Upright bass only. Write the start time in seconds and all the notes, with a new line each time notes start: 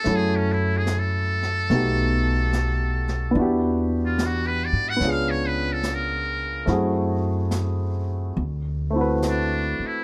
0.06 F#2
1.70 B1
3.35 E2
4.73 G#2
5.00 C#2
6.67 F#2
8.37 D2
9.79 muted upright bass stroke